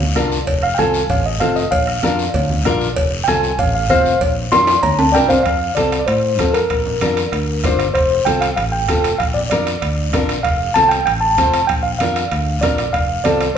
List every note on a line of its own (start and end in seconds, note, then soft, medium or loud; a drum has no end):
0.00 0.16 D2 medium
0.00 0.14 F5 medium
0.00 high conga medium
0.15 0.41 C2 medium
0.15 0.38 D4 medium
0.15 0.38 F4 medium
0.15 0.38 A#4 medium
0.15 bombo rim medium
0.15 high conga medium
0.15 short guiro medium
0.32 short guiro medium
0.47 0.72 F1 medium
0.47 bombo low medium
0.47 cowbell loud
0.47 long guiro medium
0.63 0.78 F5 medium
0.63 bombo rim medium
0.74 1.03 C2 medium
0.74 1.00 C4 medium
0.74 0.77 G5 medium
0.74 bombo rim medium
0.79 1.00 F4 medium
0.79 1.01 A4 medium
0.79 1.09 G#5 medium
0.79 high conga medium
0.79 short guiro medium
0.94 short guiro medium
1.09 1.41 A1 medium
1.09 1.25 F5 medium
1.09 bombo low medium
1.09 cowbell medium
1.09 low conga medium
1.09 long guiro medium
1.26 1.41 D#5 medium
1.40 1.66 F1 loud
1.40 1.62 C4 medium
1.40 1.63 F4 medium
1.40 1.63 A4 medium
1.40 1.56 F5 medium
1.40 bombo rim medium
1.40 high conga medium
1.40 short guiro medium
1.56 1.71 D#5 medium
1.56 short guiro medium
1.71 1.97 A#1 medium
1.71 2.62 F5 medium
1.71 bombo low medium
1.71 cowbell loud
1.71 long guiro medium
1.87 bombo rim medium
2.03 2.28 F2 medium
2.03 2.25 D4 medium
2.03 2.25 F4 medium
2.03 2.25 A#4 medium
2.03 bombo rim medium
2.03 high conga medium
2.03 short guiro medium
2.19 short guiro medium
2.34 2.66 D2 medium
2.34 bombo low medium
2.34 cowbell loud
2.34 low conga medium
2.34 long guiro medium
2.50 high conga medium
2.65 2.91 A#1 loud
2.65 2.87 D4 medium
2.65 2.87 F4 medium
2.65 2.88 A#4 loud
2.65 bombo rim medium
2.65 high conga medium
2.65 low conga medium
2.65 short guiro medium
2.81 short guiro medium
2.96 3.22 F1 medium
2.96 bombo low medium
2.96 cowbell loud
2.96 long guiro medium
3.24 3.49 C4 medium
3.24 3.26 G5 medium
3.24 short guiro medium
3.28 3.53 C2 medium
3.28 3.50 F4 medium
3.28 3.50 A4 medium
3.28 3.58 G#5 loud
3.28 bombo rim medium
3.28 high conga medium
3.43 short guiro medium
3.59 3.90 A1 loud
3.59 3.74 F5 medium
3.59 bombo low medium
3.59 cowbell medium
3.59 low conga medium
3.59 long guiro medium
3.75 3.89 F5 medium
3.90 4.15 F1 medium
3.90 4.12 C4 medium
3.90 4.12 F4 medium
3.90 4.19 C5 medium
3.90 4.12 C5 medium
3.90 4.21 F5 loud
3.90 bombo low medium
3.90 bombo rim medium
3.90 high conga medium
3.90 short guiro medium
4.06 short guiro medium
4.21 4.46 A#1 loud
4.21 bombo low medium
4.21 cowbell medium
4.21 long guiro medium
4.52 4.77 F2 medium
4.52 4.74 D4 medium
4.52 4.74 F4 medium
4.52 4.74 A#4 medium
4.52 4.82 C6 medium
4.52 bombo rim medium
4.52 high conga medium
4.52 high timbale medium
4.52 short guiro medium
4.67 high timbale medium
4.67 short guiro medium
4.83 5.15 D2 medium
4.83 4.98 A#5 medium
4.83 bombo low medium
4.83 cowbell loud
4.83 high conga medium
4.83 long guiro medium
4.99 5.14 A5 medium
4.99 low timbale loud
5.12 5.40 C2 medium
5.12 5.36 D4 medium
5.12 5.37 F4 medium
5.12 5.37 A#4 medium
5.12 5.42 D5 medium
5.12 5.29 G5 medium
5.12 bombo rim medium
5.12 low timbale medium
5.12 short guiro medium
5.29 5.44 C5 medium
5.29 5.42 F5 medium
5.29 low conga medium
5.29 low timbale medium
5.29 short guiro medium
5.43 5.71 F2 medium
5.43 5.73 F5 medium
5.43 bombo low medium
5.43 bombo rim medium
5.43 high conga soft
5.43 high timbale medium
5.43 long guiro medium
5.75 6.02 C2 medium
5.75 5.99 C4 medium
5.75 5.99 F4 medium
5.75 5.99 A4 medium
5.75 5.98 D5 medium
5.75 bombo rim medium
5.75 high conga medium
5.75 high timbale medium
5.75 short guiro medium
5.92 bombo rim medium
5.92 high timbale medium
5.92 short guiro medium
5.99 6.07 D5 medium
6.06 6.39 A2 medium
6.06 6.51 C5 medium
6.06 bombo rim medium
6.06 high conga soft
6.06 high timbale medium
6.06 long guiro medium
6.39 6.64 F2 medium
6.39 6.61 C4 medium
6.39 6.61 F4 medium
6.39 6.61 A4 medium
6.39 bombo low medium
6.39 bombo rim medium
6.39 high conga medium
6.39 high timbale medium
6.39 low timbale medium
6.39 short guiro medium
6.54 7.75 A#4 medium
6.54 bombo rim medium
6.54 high timbale medium
6.54 short guiro medium
6.70 6.95 A#1 medium
6.70 bombo low medium
6.70 bombo rim medium
6.70 high conga soft
6.70 high timbale medium
6.70 long guiro medium
6.86 low conga medium
7.01 7.26 F2 medium
7.01 7.23 D4 medium
7.01 7.24 F4 medium
7.01 7.24 A#4 loud
7.01 bombo rim medium
7.01 high conga medium
7.01 high timbale medium
7.01 short guiro medium
7.17 bombo rim medium
7.17 high timbale medium
7.17 short guiro medium
7.32 7.66 D2 medium
7.32 bombo rim medium
7.32 high conga soft
7.32 high timbale medium
7.32 long guiro medium
7.64 7.89 G1 medium
7.64 7.86 D4 medium
7.64 7.86 F4 medium
7.64 7.86 C5 loud
7.64 bombo low medium
7.64 bombo rim medium
7.64 high conga medium
7.64 low conga medium
7.64 high timbale medium
7.64 short guiro medium
7.79 bombo rim medium
7.79 high timbale medium
7.79 short guiro medium
7.94 8.20 F1 medium
7.94 8.23 C5 medium
7.94 bombo low medium
7.94 bombo rim medium
7.94 high conga soft
7.94 high timbale medium
7.94 long guiro medium
8.25 8.51 C2 medium
8.25 8.48 C4 medium
8.25 8.48 F4 medium
8.25 8.49 A4 medium
8.25 8.40 G5 loud
8.25 bombo rim medium
8.25 high conga medium
8.25 high timbale medium
8.25 short guiro medium
8.41 8.48 F5 medium
8.41 bombo rim medium
8.41 high timbale medium
8.41 short guiro medium
8.56 8.89 A1 medium
8.56 8.64 F5 medium
8.56 bombo rim medium
8.56 high conga soft
8.56 high timbale medium
8.56 long guiro medium
8.72 9.21 G5 medium
8.88 9.14 F1 medium
8.88 9.11 C4 medium
8.88 9.11 F4 medium
8.88 9.11 A4 medium
8.88 bombo low medium
8.88 bombo rim loud
8.88 high conga medium
8.88 high timbale medium
8.88 short guiro medium
9.04 bombo rim medium
9.04 high timbale medium
9.04 short guiro medium
9.18 9.45 A#1 medium
9.18 9.26 F5 medium
9.18 bombo low medium
9.18 bombo rim medium
9.18 high conga soft
9.18 high timbale medium
9.18 long guiro medium
9.34 9.41 D5 medium
9.34 low conga medium
9.50 9.76 F2 medium
9.50 9.73 D4 medium
9.50 9.73 F4 medium
9.50 9.73 A#4 medium
9.50 10.24 D5 medium
9.50 bombo rim medium
9.50 high conga medium
9.50 high timbale medium
9.50 short guiro medium
9.67 bombo rim medium
9.67 high timbale medium
9.67 short guiro medium
9.82 10.14 D2 medium
9.82 bombo rim medium
9.82 high conga soft
9.82 high timbale medium
9.82 long guiro medium
10.13 10.38 A#1 medium
10.13 10.35 D4 medium
10.13 10.35 F4 medium
10.13 10.35 A#4 medium
10.13 bombo low medium
10.13 bombo rim medium
10.13 high conga medium
10.13 low conga medium
10.13 high timbale medium
10.13 low timbale medium
10.13 short guiro medium
10.29 bombo rim medium
10.29 high timbale medium
10.29 short guiro medium
10.43 10.69 F1 medium
10.43 10.76 F5 loud
10.43 bombo low medium
10.43 bombo rim medium
10.43 high conga soft
10.43 high timbale medium
10.43 long guiro medium
10.74 11.01 C2 medium
10.74 10.98 C4 medium
10.74 10.98 F4 medium
10.74 10.98 A4 medium
10.74 10.89 A5 loud
10.74 bombo rim medium
10.74 high conga medium
10.74 high timbale medium
10.74 short guiro medium
10.89 11.04 G5 loud
10.89 bombo rim medium
10.89 high timbale medium
10.89 short guiro medium
11.06 11.38 A1 medium
11.06 11.13 G5 loud
11.06 bombo rim medium
11.06 high conga soft
11.06 high timbale medium
11.06 long guiro medium
11.21 11.65 A5 medium
11.38 11.63 F1 medium
11.38 11.60 C4 medium
11.38 11.60 F4 medium
11.38 11.60 C5 medium
11.38 bombo low medium
11.38 bombo rim medium
11.38 high conga medium
11.38 high timbale medium
11.38 low timbale medium
11.38 short guiro medium
11.54 bombo rim medium
11.54 high timbale medium
11.54 short guiro medium
11.67 11.94 A#1 medium
11.67 11.75 G5 loud
11.67 bombo low medium
11.67 bombo rim medium
11.67 high conga soft
11.67 high timbale medium
11.67 long guiro medium
11.83 11.90 F5 medium
11.99 12.25 F2 medium
11.99 12.22 D4 medium
11.99 12.22 F4 medium
11.99 12.23 A#4 medium
11.99 12.64 F5 medium
11.99 bombo rim medium
11.99 high conga medium
11.99 high timbale medium
11.99 short guiro medium
12.16 bombo rim medium
12.16 high timbale medium
12.16 short guiro medium
12.31 12.63 D2 medium
12.31 bombo rim medium
12.31 high conga soft
12.31 high timbale medium
12.31 long guiro medium
12.61 12.88 A#1 medium
12.61 12.85 D4 medium
12.61 12.85 F4 medium
12.61 12.85 A#4 medium
12.61 12.94 D5 medium
12.61 bombo low medium
12.61 bombo rim loud
12.61 high conga medium
12.61 low conga medium
12.61 high timbale medium
12.61 low timbale medium
12.61 short guiro medium
12.78 bombo rim medium
12.78 high timbale medium
12.78 short guiro medium
12.93 13.19 F1 medium
12.93 13.26 F5 medium
12.93 bombo low medium
12.93 bombo rim medium
12.93 high conga soft
12.93 high timbale medium
12.93 long guiro medium
13.24 13.50 C2 medium
13.24 13.47 C4 medium
13.24 13.47 F4 medium
13.24 13.47 A4 medium
13.24 13.57 D5 medium
13.24 bombo rim medium
13.24 high conga medium
13.24 high timbale medium
13.24 short guiro medium
13.41 bombo rim medium
13.41 high timbale medium
13.41 short guiro medium